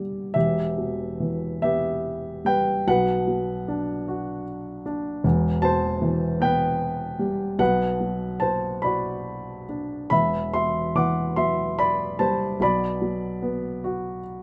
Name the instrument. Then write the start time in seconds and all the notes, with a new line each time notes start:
grand piano
Already playing: E2 B2 D3 G3 B3 D5
0.34 E1 E2 G4 E5
0.78 B2
1.20 E3
1.62 B3 G4 E5
2.45 G3 B4 G5
2.87 B1 B2 B4 F#5
3.27 F#3
3.68 D4
4.08 F#4
4.86 D4
5.24 E1 E2
5.62 B2 C5 A5
6.02 E3
6.40 B3 B4 G5
7.19 G3
7.59 B1 B2 B4 F#5
8.01 F#3
8.40 C5 A5
8.82 F#4 D5 B5
9.69 D4
10.10 E1 E2 E5 B5
10.54 B2 E5 C6
10.95 E3 F#5 D6
11.36 F#3 E5 C6
11.79 D5 B5
12.19 G3 C5 A5
12.60 B1 B2 D5 B5
13.02 F#3
13.42 B3
13.84 F#4